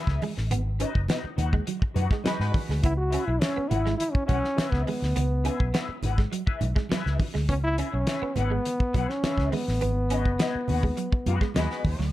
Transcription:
Already playing: E4 G#4 B4 E5
0.07 C#2, kick, snare
0.22 G#3, muted clean electric guitar stroke, open hi-hat, high conga
0.37 A1, muted clean electric guitar stroke, snare
0.51 G#1 B3, closed hi-hat, muted conga
0.80 C#4 D#4 F#4 B4 D#5, closed hi-hat
0.95 F#1, muted clean electric guitar stroke, kick
1.08 B3 D#4 F#4 B4 D#5, snare, closed hi-hat, high conga
1.23 muted clean electric guitar stroke, muted fingered electric bass stroke
1.37 D#2 D#4 F#4 B4 F#5, closed hi-hat, low conga
1.51 G#3, muted clean electric guitar stroke, kick
1.67 F#3, closed hi-hat, muted conga
1.80 muted clean electric guitar stroke, muted fingered electric bass stroke, kick
1.94 F#2 D#4 F#4 B4 F#5, closed hi-hat, muted conga, low conga
2.09 G#3, muted clean electric guitar stroke, kick, snare
2.24 F#3 G#3 D#4 F#4 B4 D#5, muted fingered electric bass stroke, snare, closed hi-hat, high conga
2.40 G#2 G#3 F#4 B4, muted clean electric guitar stroke, snare
2.52 muted clean electric guitar stroke, kick, open hi-hat, high conga
2.67 D2 G#3, muted clean electric guitar stroke, snare
2.83 C#2 B3 E4, kick, closed hi-hat, muted conga
2.97 F#4
3.10 C#4 E4 G#4 B4 E5, closed hi-hat
3.27 B1 E4, muted clean electric guitar stroke
3.39 C#4 E4 G#4 B4 E5, snare, closed hi-hat, high conga
3.54 B3, muted clean electric guitar stroke, muted fingered electric bass stroke
3.68 G#1 E4 G#4 B4 F#5, muted clean electric guitar stroke, closed hi-hat, low conga
3.83 G#3, muted clean electric guitar stroke, snare
3.97 E4, closed hi-hat, muted conga
4.12 C#4, muted clean electric guitar stroke, muted fingered electric bass stroke, kick
4.26 B1 F#3 C#4 E4 G#4 B4 F#5, kick, closed hi-hat, muted conga
4.41 muted clean electric guitar stroke, snare
4.56 E4 G#4 B4 E5, muted fingered electric bass stroke, snare, closed hi-hat, high conga
4.70 C#2 B3, kick, snare
4.85 G#3 B3, muted clean electric guitar stroke, open hi-hat, high conga
5.00 D2, muted clean electric guitar stroke, snare
5.16 C#2 B3, closed hi-hat, muted conga
5.44 C#4 E4 G#4 B4 E5, closed hi-hat
5.60 B1, muted clean electric guitar stroke, kick
5.74 B3 E4 G#4 B4 E5, snare, closed hi-hat, high conga
5.88 muted clean electric guitar stroke, muted fingered electric bass stroke
6.03 G#1 E4 G#4 B4 F#5, closed hi-hat, low conga
6.18 G#3, muted clean electric guitar stroke, kick, snare
6.32 F#3, muted clean electric guitar stroke, closed hi-hat
6.47 E4 G#4 B4 E5, muted clean electric guitar stroke, muted fingered electric bass stroke, kick
6.61 B1, muted clean electric guitar stroke, closed hi-hat, muted conga, low conga
6.76 G#3, muted clean electric guitar stroke, kick, snare
6.89 F#3 E4 G#4 B4, muted fingered electric bass stroke, snare, closed hi-hat, high conga
6.93 E5
7.05 C#2, muted clean electric guitar stroke, snare
7.20 muted clean electric guitar stroke, kick, open hi-hat, high conga
7.34 D2 G#3, muted clean electric guitar stroke, snare
7.49 C#2 B3 C#4, kick, closed hi-hat, muted conga
7.64 E4
7.77 C#4 E4 G#4 B4 E5, closed hi-hat
7.93 B1 C#4, muted clean electric guitar stroke
8.07 E4 G#4 B4 E5, snare, closed hi-hat, high conga
8.21 B3, muted clean electric guitar stroke, muted fingered electric bass stroke
8.36 G#1 B3 E4 G#4 B4 F#5, muted clean electric guitar stroke, closed hi-hat, low conga
8.50 G#3, muted clean electric guitar stroke
8.65 muted clean electric guitar stroke, closed hi-hat, muted conga
8.80 muted clean electric guitar stroke, muted fingered electric bass stroke, kick
8.94 B1 F#3 E4 G#4 B4 F#5, kick, closed hi-hat, muted conga
9.08 C#4, muted clean electric guitar stroke, snare
9.23 E4 G#4 B4 E5, muted fingered electric bass stroke, snare, closed hi-hat, high conga
9.37 C#2, kick, snare
9.52 G#3 B3, muted clean electric guitar stroke, open hi-hat, high conga
9.67 A1, muted clean electric guitar stroke, snare
9.81 G#1 B3, closed hi-hat, muted conga
10.10 B3 C#4 F#4 G#4 D#5, closed hi-hat
10.25 F#1, muted clean electric guitar stroke, kick
10.39 B3 F#4 G#4 D#5, snare, closed hi-hat, high conga
10.55 muted fingered electric bass stroke, muted clean electric guitar stroke
10.68 D#2 B3 F#4 G#4 F#5, open hi-hat, low conga
10.83 G#3, muted clean electric guitar stroke, kick
10.97 F#3, closed hi-hat
11.12 muted clean electric guitar stroke, muted fingered electric bass stroke, kick
11.26 F#2 B3 F#4 G#4 F#5, closed hi-hat, muted conga, low conga
11.40 G#3, muted clean electric guitar stroke, kick, snare
11.54 D#2 F#3 G#3 B3 F#4 G#4 B4 D#5, snare, closed hi-hat, high conga
11.70 G#3 F#4 B4, muted clean electric guitar stroke, snare
11.84 D#2, muted clean electric guitar stroke, kick, open hi-hat, high conga
11.99 D2 F#3, muted clean electric guitar stroke, snare

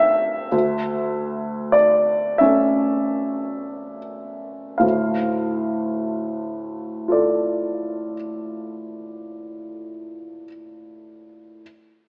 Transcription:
Already playing: D2 A3 D4 E5 F5 G5
0.52 D2
1.72 D5
2.38 A3 C#4 E5
4.78 D2 A2 F5
7.08 F4 A4 D5

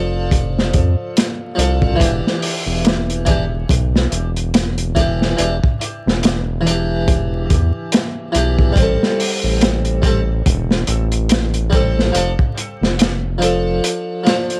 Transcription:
Already playing: F1 F3 D4 A4
0.31 kick, closed hi-hat
0.58 snare
0.73 F2, kick, closed hi-hat
1.17 snare, closed hi-hat
1.55 C2 F3 D4, closed hi-hat
1.60 A4
1.82 kick
1.96 E3
2.00 E1 D4, kick, closed hi-hat
2.05 G4
2.27 snare
2.43 open hi-hat
2.66 E1
2.85 snare, closed hi-hat
3.10 closed hi-hat
3.25 E3 D4, kick, closed hi-hat
3.30 G4
3.69 B1, kick, closed hi-hat
3.96 snare
4.12 E1, closed hi-hat
4.36 closed hi-hat
4.54 snare, closed hi-hat
4.78 closed hi-hat
4.95 E3 D4, kick, closed hi-hat
5.00 G4
5.22 snare
5.37 E1 E3 D4, closed hi-hat
5.41 G4
5.64 kick
5.81 closed hi-hat
6.06 E1, snare
6.23 snare, closed hi-hat
6.61 E3
6.66 D4, closed hi-hat
6.71 G4
7.08 kick, closed hi-hat
7.50 E2, kick, closed hi-hat
7.92 snare, closed hi-hat
8.32 B1 E3 D4, closed hi-hat
8.37 G4
8.59 kick
8.72 A1 G3, kick
8.77 C4, closed hi-hat
8.82 A4
9.03 snare
9.20 open hi-hat
9.44 A1
9.61 snare, closed hi-hat
9.85 closed hi-hat
10.02 G3 C4, kick, closed hi-hat
10.06 A4
10.46 E1, kick, closed hi-hat
10.71 snare
10.87 A1, closed hi-hat
11.12 closed hi-hat
11.29 snare, closed hi-hat
11.54 closed hi-hat
11.70 G3 C4, kick, closed hi-hat
11.75 A4
11.99 snare
12.12 F1 F3 D4, closed hi-hat
12.17 A4
12.39 kick
12.57 closed hi-hat
12.81 F1, snare
12.99 snare, closed hi-hat
13.38 F3 D4, closed hi-hat
13.43 A4
13.84 closed hi-hat
14.24 F3 D4, snare, closed hi-hat
14.29 C5
14.50 closed hi-hat

